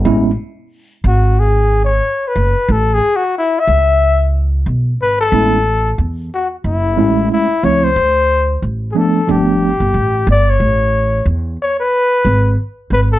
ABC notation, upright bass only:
X:1
M:4/4
L:1/16
Q:"Swing 16ths" 1/4=91
K:A
V:1 name="Upright bass" clef=bass
A,,,2 z4 G,,,6 z2 F,,, z | A,,,2 z4 C,,6 B,,,2 G,,,2 | A,,,4 E,,2 z2 F,,,2 A,,,2 z2 C,,2 | D,,4 A,,,2 z2 =G,,,3 G,,, A,,,2 G,,,2 |
A,,,4 E,,2 z4 G,,,2 z2 G,,,2 |]